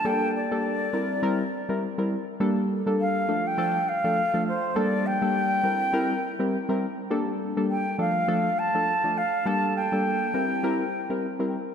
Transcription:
X:1
M:4/4
L:1/16
Q:"Swing 16ths" 1/4=102
K:Gdor
V:1 name="Flute"
g2 d12 z2 | z4 f3 g3 f4 c2 | d2 g12 z2 | z4 g2 f4 a4 f2 |
a2 g12 z2 |]
V:2 name="Synth keys"
[G,B,DA]3 [G,B,DA]3 [G,CEB]2 [G,CEB] z2 [G,CEB] z [G,CEB] z2 | [G,B,DA]3 [G,B,DA]3 [F,A,DA]2 [F,A,DA] z2 [F,A,DA] z [F,A,DA] z2 | [G,B,DA]3 [G,B,DA]3 [G,CEB]2 [G,CEB] z2 [G,CEB] z [G,CEB] z2 | [G,B,DA]3 [G,B,DA]3 [F,A,DA]2 [F,A,DA] z2 [F,A,DA] z [F,A,DA] z2 |
[G,B,DA]3 [G,B,DA]3 [G,CEB]2 [G,CEB] z2 [G,CEB] z [G,CEB] z2 |]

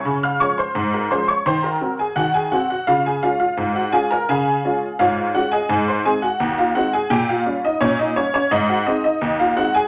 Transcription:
X:1
M:2/4
L:1/16
Q:1/4=85
K:Db
V:1 name="Honky-tonk piano"
[dad'] [ff'] [dd'] [cc']2 [Bb] [cc'] [dd'] | [cc'] [Bb]2 [Aa] [Gg] [Aa] [Gg] [Gg] | [Ff] [Aa] [Ff] [Ff]2 [Gg] [Aa] [Bb] | [Afa]4 [Fdf]2 [Gg] [Aea]- |
[Aea] [cc'] [Aa] [Gg]2 [Ff] [Gg] [Aa] | [=G=g] [Ff]2 [Ee] [Dd] [Ee] [Dd] [Dd] | [Ee] [Gg] [Ee] [Ee]2 [Ff] [Gg] [Aa] |]
V:2 name="Honky-tonk piano" clef=bass
D,2 [F,A,D]2 A,,2 [F,A,D]2 | E,2 [G,CG]2 E,2 [G,C]2 | D,2 [A,D]2 A,,2 [A,DF]2 | D,2 [A,DF]2 A,,2 [A,DF]2 |
A,,2 [A,CE]2 E,,2 [A,CE]2 | B,,2 [=G,D]2 B,,2 G,2 | A,,2 [A,C]2 E,,2 [A,CE]2 |]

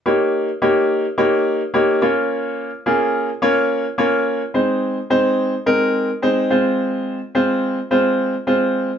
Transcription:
X:1
M:4/4
L:1/16
Q:1/4=107
K:Ebmix
V:1 name="Grand piano"
[B,EGd]3 z [B,EGd]3 z [B,EGd]3 z [B,EGd]2 [B,DFd]2- | [B,DFd]2 z2 [B,DFA]3 z [B,DFd]3 z [B,DFd]3 z | [A,CEc]3 z [A,CEc]3 z [A,CEB]3 z [A,CEc]2 [A,CFc]2- | [A,CFc]2 z2 [A,CFc]3 z [A,CFc]3 z [A,CFc]3 z |]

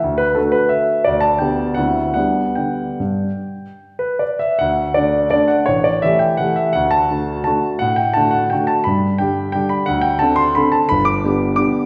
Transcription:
X:1
M:3/4
L:1/8
Q:1/4=170
K:G
V:1 name="Grand piano"
z B A B e2 | d a g2 f2 | f2 g4- | g3 B d e |
[K:D] f2 d2 d f | c d e g f e | f a3 a2 | f g a f g a |
b2 g2 g b | f g a =c' b a | b d'3 d'2 |]
V:2 name="Grand piano"
D,,2 [D,A,F]4 | D,,2 [D,B,G]2 [D,,D,CE]2 | [G,B,D]2 D,2 G,,2 | z6 |
[K:D] D,,2 [D,A,D]2 [D,A,D]2 | A,,,2 [E,A,G]2 [E,A,G]2 | D,,2 [D,A,F]2 [D,A,F]2 | A,,2 [D,A,F]2 [D,A,F]2 |
G,,2 [D,G,G]2 [D,G,G]2 | D,,2 [D,=CA]2 [D,CA]2 | G,,,2 [D,B,G]2 [D,B,G]2 |]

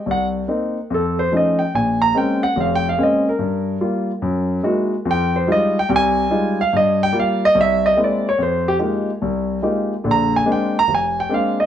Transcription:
X:1
M:4/4
L:1/8
Q:"Swing" 1/4=144
K:Fm
V:1 name="Grand piano"
_g z3 =A c e =g | a b g _g (3f =g f e B- | B2 z6 | g c e g [ga]3 f |
e g f e =e _e =d _d | c G z6 | b a g b a g f e |]
V:2 name="Grand piano"
C,,2 [B,CE] z F,,2 [F,=A,DE] z | B,,,2 [A,B,CD] z [F,,,F,,]2 [A,B,CD] z | G,,2 [G,B,F] z _G,,2 [A,B,E_F_G] z | [F,,F,]2 [G,A,EF] z [C,,C,]2 [G,A,EF] z |
G,,2 [G,B,F] z C,,2 [^G,B,C=E] z | F,,2 [A,B,EFG] z C,,2 [A,B,EFG] z | [B,,,=D,]2 [A,B,C=D] z F,,,2 [A,B,CD] z |]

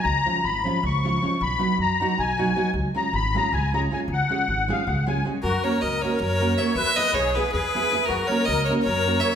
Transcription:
X:1
M:7/8
L:1/8
Q:1/4=157
K:Dbmix
V:1 name="Accordion"
b2 c'2 d'3 | c'2 b2 a3 | z b c' b a b a | g3 f g a z |
[K:F#mix] F A A A A2 c | B B G G G3 | F A A A A2 c |]
V:2 name="Fiddle"
z6 z | z6 z | z6 z | z6 z |
[K:F#mix] A c d c c2 e | e d c B B3 | A c d c c2 e |]
V:3 name="Nylon-string guitar"
z [F,A,DF] z [F,A,DF] z [F,A,DF] [F,A,DF] | z [G,CEG] z [G,CEG] z [G,CEG] [G,CEG] | z [A,DFA] z [A,DFA] z [A,DFA] [A,DFA] | z [A,DFA] z [A,DFA] z [A,DFA] [A,DFA] |
[K:F#mix] z [A,CFA] z [A,CFA] z [A,CFA] [A,CFA] | z [B,EGB] z [B,EGB] z [B,EGB] [B,EGB] | z [A,CFA] z [A,CFA] z [A,CFA] [A,CFA] |]
V:4 name="Upright bass" clef=bass
D,, z A,,,2 D,,3 | C,, z G,,2 C,,3 | D,, z A,,,2 D,,3 | D,, z A,,,2 D,,3 |
[K:F#mix] F,, z C,,2 F,,3 | E,, z B,,,2 E,,3 | F,, z C,,2 F,,3 |]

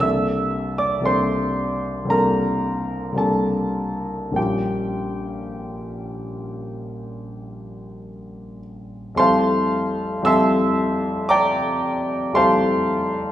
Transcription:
X:1
M:4/4
L:1/16
Q:1/4=56
K:F
V:1 name="Grand piano"
[ee']3 [dd'] [cc']4 [Bb]4 [Aa]4 | [Gg]12- [Gg]2 z2 | [cfac']4 [eac'e']4 [dgbd']4 [cfac']4 |]
V:2 name="Grand piano"
[C,,G,B,DA]4 [C,,G,B,DA]4 [C,,G,B,DA]4 [C,,G,B,D]4 | [B,,,G,B,_DF]16 | [F,,G,A,EG]4 [F,,G,A,EG]8 [F,,G,A,EG]4 |]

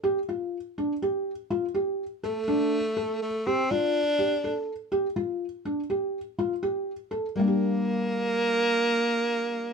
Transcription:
X:1
M:5/4
L:1/8
Q:1/4=123
K:Gm
V:1 name="Felt piano"
G F2 D G2 F G2 A | D2 A2 G F2 G A2 | G F2 D G2 F G2 A | [G,B,DG]8- [G,B,DG]2 |]
V:2 name="Tenor saxophone"
z8 z A,- | A,3 A, C D4 z | z8 z2 | B,8- B,2 |]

